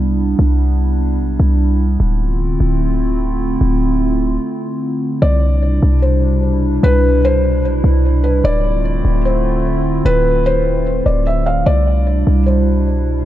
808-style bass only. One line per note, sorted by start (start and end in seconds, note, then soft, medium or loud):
0.00 0.35 C2 loud
0.39 1.21 C2 loud
1.19 1.39 B1 medium
1.40 1.98 C2 loud
2.00 2.58 D1 loud
2.60 3.57 D1 loud
3.61 4.38 D1 loud
5.22 5.80 C2 loud
5.83 6.79 C2 loud
6.83 7.65 C2 loud
7.64 7.83 B1 loud
7.84 8.42 C2 loud
8.44 9.02 D1 loud
9.05 10.01 D1 loud
10.05 11.02 D1 loud
11.06 11.64 D1 loud
11.66 12.24 C2 loud
12.27 13.24 C2 loud